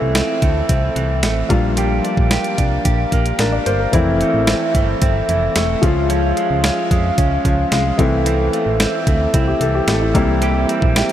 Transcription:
0.00 0.22 C2 medium
0.00 0.95 E3 medium
0.00 1.46 E3 medium
0.00 0.41 A3 medium
0.00 1.46 A3 medium
0.00 0.14 C4 medium
0.00 1.47 C4 medium
0.00 1.48 C4 medium
0.00 1.47 E4 medium
0.00 1.48 E4 medium
0.00 1.48 A4 medium
0.00 1.48 E5 medium
0.15 0.68 C4 medium
0.15 snare loud
0.15 closed hi-hat medium
0.42 0.63 D2 medium
0.42 1.22 A3 medium
0.42 kick medium
0.42 closed hi-hat medium
0.69 0.90 C2 medium
0.69 1.56 C4 medium
0.69 kick medium
0.69 closed hi-hat medium
0.96 1.25 C2 medium
0.96 1.50 E3 medium
0.96 closed hi-hat medium
1.23 1.44 A1 medium
1.23 1.55 A3 medium
1.23 snare medium
1.23 closed hi-hat medium
1.49 2.01 A#1 medium
1.49 1.77 F3 medium
1.49 3.62 G3 medium
1.49 3.62 A#3 medium
1.49 3.91 D4 medium
1.49 3.63 D4 medium
1.49 3.63 F4 medium
1.49 3.91 G4 medium
1.49 3.91 A#4 medium
1.49 3.91 F5 medium
1.49 kick loud
1.49 closed hi-hat medium
1.77 3.93 F3 medium
1.77 2.30 G4 medium
1.77 closed hi-hat medium
2.04 2.57 D4 medium
2.04 closed hi-hat medium
2.17 2.38 A#1 medium
2.17 kick medium
2.31 2.84 G4 medium
2.31 snare loud
2.31 closed hi-hat medium
2.44 closed hi-hat soft
2.58 2.79 C2 medium
2.58 3.38 D4 medium
2.58 kick medium
2.58 closed hi-hat medium
2.85 3.06 A#1 medium
2.85 3.99 G4 medium
2.85 kick medium
2.85 closed hi-hat loud
3.12 3.33 A#1 medium
3.12 3.65 A#3 medium
3.12 kick medium
3.12 closed hi-hat medium
3.26 closed hi-hat soft
3.39 3.59 A1 medium
3.39 3.94 D4 medium
3.39 3.52 A#4 medium
3.39 snare medium
3.39 closed hi-hat medium
3.52 3.66 D5 medium
3.66 3.87 G1 medium
3.66 3.99 A#3 medium
3.66 3.79 C5 medium
3.66 closed hi-hat medium
3.79 4.05 A#4 medium
3.92 4.24 F1 loud
3.92 5.78 E3 medium
3.92 5.28 E3 medium
3.92 5.78 A3 medium
3.92 5.79 C4 medium
3.92 5.81 C4 medium
3.92 4.47 C4 medium
3.92 5.79 E4 medium
3.92 5.81 A4 medium
3.92 5.81 E5 medium
3.92 kick medium
3.92 closed hi-hat medium
4.21 4.74 A3 medium
4.21 closed hi-hat medium
4.34 4.54 A1 medium
4.47 5.01 C4 medium
4.47 snare loud
4.47 closed hi-hat medium
4.75 4.95 G1 medium
4.75 5.55 A3 medium
4.75 kick medium
4.75 closed hi-hat medium
5.02 5.22 G1 medium
5.02 5.88 C4 medium
5.02 kick medium
5.02 closed hi-hat loud
5.29 5.49 F1 medium
5.29 5.83 E3 medium
5.29 closed hi-hat medium
5.56 5.76 E1 medium
5.56 5.88 A3 medium
5.56 snare medium
5.56 closed hi-hat medium
5.81 6.33 C#2 loud
5.81 7.94 F3 medium
5.81 6.09 F3 medium
5.81 7.95 G#3 medium
5.81 7.97 C#4 medium
5.81 7.95 C#4 medium
5.81 7.95 F4 medium
5.81 7.97 G#4 medium
5.81 7.97 F5 medium
5.81 kick medium
5.81 closed hi-hat medium
6.10 7.44 F3 medium
6.10 6.63 C#4 medium
6.10 closed hi-hat medium
6.37 6.90 G#3 medium
6.37 closed hi-hat medium
6.51 6.71 C#2 medium
6.64 7.17 C#4 medium
6.64 snare loud
6.64 closed hi-hat medium
6.91 7.11 F2 medium
6.91 7.71 G#3 medium
6.91 kick medium
6.91 closed hi-hat medium
7.18 7.38 C#2 medium
7.18 8.04 C#4 medium
7.18 kick medium
7.18 closed hi-hat medium
7.45 7.65 C#2 medium
7.45 7.98 F3 medium
7.45 kick medium
7.45 closed hi-hat medium
7.72 7.92 C2 medium
7.72 8.04 G#3 medium
7.72 snare medium
7.72 closed hi-hat medium
7.98 8.50 C2 loud
7.98 9.31 E3 medium
7.98 8.25 E3 medium
7.98 9.31 A3 medium
7.98 11.12 C4 medium
7.98 9.31 C4 medium
7.98 10.13 E4 medium
7.98 9.32 E4 medium
7.98 10.13 A4 medium
7.98 11.12 E5 medium
7.98 kick medium
7.98 closed hi-hat medium
8.26 9.60 E3 medium
8.26 8.79 C4 medium
8.26 closed hi-hat medium
8.53 9.06 A3 medium
8.53 closed hi-hat medium
8.66 8.87 A1 medium
8.80 9.33 C4 medium
8.80 snare loud
8.80 closed hi-hat medium
9.07 9.27 D2 medium
9.07 9.87 A3 medium
9.07 kick medium
9.07 closed hi-hat medium
9.34 9.54 C2 medium
9.34 10.69 C4 medium
9.34 9.47 E4 medium
9.34 kick medium
9.34 closed hi-hat medium
9.47 9.60 G4 medium
9.61 9.81 C2 medium
9.61 10.14 E3 medium
9.61 9.74 A4 medium
9.61 closed hi-hat medium
9.75 9.87 G4 medium
9.88 10.16 A1 medium
9.88 10.20 A3 medium
9.88 10.01 A4 medium
9.88 snare medium
9.88 closed hi-hat medium
10.01 10.15 E4 medium
10.14 10.66 C2 loud
10.14 10.41 E3 medium
10.14 11.12 G3 medium
10.14 11.12 A#3 medium
10.14 11.12 C4 medium
10.14 11.12 E4 medium
10.14 11.12 G4 medium
10.14 11.12 A#4 medium
10.14 kick loud
10.14 closed hi-hat medium
10.42 11.12 E3 medium
10.42 10.96 G4 medium
10.42 closed hi-hat medium
10.69 11.12 C4 medium
10.69 closed hi-hat medium
10.82 11.03 A#1 medium
10.82 kick medium
10.96 11.12 G4 medium
10.96 snare loud
10.96 closed hi-hat medium

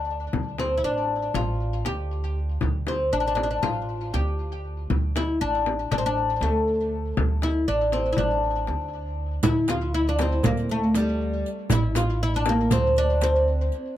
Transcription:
0.00 0.28 D2 medium
0.33 0.79 D2 medium
0.33 frame drum medium
0.58 0.77 C4 medium
0.58 frame drum medium
0.78 0.84 E4 medium
0.84 1.31 A1 medium
0.84 1.35 D4 medium
1.34 1.81 A1 medium
1.34 1.85 F4 medium
1.34 frame drum medium
1.85 2.57 D2 medium
1.85 2.38 G4 medium
1.85 frame drum medium
2.61 3.08 D2 medium
2.61 frame drum medium
2.87 3.12 C4 medium
2.87 frame drum medium
3.12 3.59 A1 medium
3.12 3.19 D4 medium
3.20 3.26 D4 soft
3.28 3.34 D4 medium
3.35 3.42 D4 medium
3.35 frame drum medium
3.43 3.49 D4 medium
3.51 3.58 D4 soft
3.63 4.09 A1 medium
3.63 4.13 F4 medium
3.63 frame drum medium
4.13 4.85 D2 medium
4.13 4.67 G4 medium
4.13 frame drum medium
4.90 5.36 D2 medium
4.90 frame drum medium
5.16 5.41 E4 medium
5.16 frame drum medium
5.41 5.87 A1 medium
5.41 5.90 D4 medium
5.66 frame drum medium
5.91 6.37 A1 medium
5.91 5.98 D4 medium
5.91 frame drum medium
5.98 6.05 C4 medium
6.06 6.43 D4 medium
6.41 7.13 D2 medium
6.41 6.95 A3 medium
6.41 frame drum medium
7.17 7.64 D2 medium
7.17 frame drum medium
7.42 7.68 E4 medium
7.42 frame drum medium
7.68 8.14 A1 medium
7.68 7.93 D4 medium
7.92 8.12 C4 medium
7.92 frame drum medium
8.13 8.17 E4 medium
8.17 8.65 A1 medium
8.17 9.15 D4 medium
8.17 frame drum medium
8.67 9.40 D2 medium
8.67 frame drum soft
9.43 10.41 D2 medium
9.43 9.69 E4 medium
9.43 riq medium
9.43 darbuka dum loud
9.43 frame drum medium
9.68 9.94 F4 medium
9.68 riq soft
9.68 darbuka tek medium
9.68 frame drum medium
9.93 10.07 E4 medium
9.93 darbuka ka soft
10.09 10.21 D4 medium
10.19 10.46 C4 medium
10.19 riq soft
10.19 darbuka tek medium
10.19 frame drum medium
10.43 11.42 D2 medium
10.43 10.71 A#3 medium
10.43 riq medium
10.43 darbuka dum medium
10.43 frame drum medium
10.57 riq soft
10.69 10.97 A3 medium
10.69 riq soft
10.69 darbuka ka soft
10.95 11.48 G3 medium
10.95 riq medium
10.95 darbuka tek medium
10.95 frame drum medium
11.46 riq soft
11.70 12.68 A1 medium
11.70 11.96 E4 medium
11.70 riq medium
11.70 darbuka dum medium
11.70 frame drum medium
11.95 12.22 F4 medium
11.95 riq medium
11.95 darbuka tek medium
11.95 frame drum medium
12.21 12.35 E4 medium
12.21 darbuka ka soft
12.36 12.48 D4 medium
12.46 12.74 A#3 medium
12.46 riq soft
12.46 frame drum medium
12.71 13.68 D2 medium
12.71 12.98 C4 medium
12.71 riq medium
12.71 frame drum medium
12.71 darbuka dum medium
12.96 13.23 D4 medium
12.96 riq soft
12.96 darbuka ka soft
13.21 13.75 C4 medium
13.21 riq medium
13.21 darbuka tek medium
13.21 frame drum medium
13.72 riq soft

